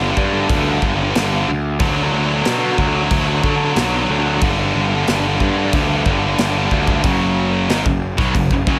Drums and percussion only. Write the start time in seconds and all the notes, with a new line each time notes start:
0.17 kick
0.49 kick, crash
0.82 kick
1.15 snare, crash
1.80 kick, crash
2.45 snare, crash
2.78 kick
3.11 kick, crash
3.43 kick
3.76 snare, crash
4.41 kick, crash
5.07 snare, crash
5.40 kick
5.73 kick, crash
6.06 kick
6.38 snare, crash
6.71 kick
6.87 kick
7.04 kick, crash
7.70 snare, crash
7.86 kick
8.18 kick, snare
8.35 kick, crash
8.51 kick
8.67 kick